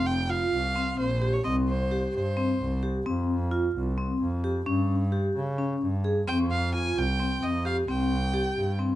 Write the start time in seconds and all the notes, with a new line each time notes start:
Already playing: F1 C4
0.06 G5
0.29 F4 F5
0.53 C2
0.76 C4
0.98 A#1 C5
1.22 G4
1.33 C#5
1.44 C2 C4 D#5
1.68 C5
1.91 G4
2.14 G2 C5
2.37 C4
2.60 C2
2.83 G4
3.06 F2 C4
3.51 F4
3.75 C2
3.98 C4
4.21 F2
4.44 G4
4.66 G2 C#4
5.12 G4
5.36 C#3
5.58 C#4
5.82 G2
6.04 G#4
6.27 F2 C4 G5
6.51 F5
6.74 F4 G#5
6.96 C2 G5
7.20 C4
7.42 F2 D#5
7.65 G4 F5
7.88 C2 C4 G5
8.34 G4
8.57 G2
8.79 C4